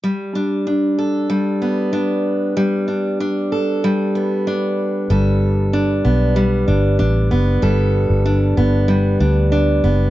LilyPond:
<<
  \new Staff \with { instrumentName = "Steel-string acoustic guitar" } { \time 4/4 \key g \major \tempo 4 = 95 g8 d'8 d'8 a'8 g8 b8 d'4 | g8 d'8 d'8 a'8 g8 b8 d'4 | <g a'>4 d'8 b8 g8 d'8 d'8 b8 | <g a'>4 d'8 b8 g8 d'8 d'8 b8 | }
  \new Staff \with { instrumentName = "Fingered electric bass" } { \clef bass \time 4/4 \key g \major r1 | r1 | g,,4. b,,4 g,,8 a,,8 fis,,8 | g,,8. g,,8. g,,4 d,4 fis,,8 | }
>>